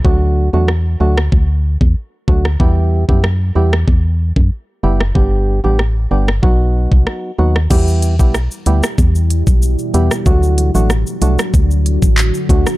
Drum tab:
CC |----------------|----------------|----------------|x---------------|
HH |----------------|----------------|----------------|--x---x---x---x-|
SH |----------------|----------------|----------------|xxxxxxxxxxxxxxxx|
CP |----------------|----------------|----------------|----------------|
SD |----r--r-------r|----r--r-------r|----r--r----r--r|----r--r-------r|
BD |o-------o--o--o-|o--o----o--o----|o-------o--o----|o--o----o--o----|

CC |----------------|
HH |--x---x---x---x-|
SH |xxxxxxxxxxxxxxxx|
CP |------------x---|
SD |----r--r-------r|
BD |o-------o--o--o-|